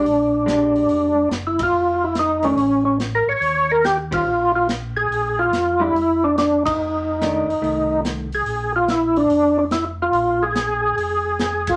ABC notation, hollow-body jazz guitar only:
X:1
M:4/4
L:1/8
Q:"Swing" 1/4=143
K:Bbmix
V:1 name="Hollow-body jazz guitar"
z2 [A,DG]3 z3 | z3 [E,=A,D] z4 | z3 [E,_DGc] z4 | z3 [A,DG] z4 |
z2 [E,=A,D] z [E,A,]3 z | z8 | z8 |]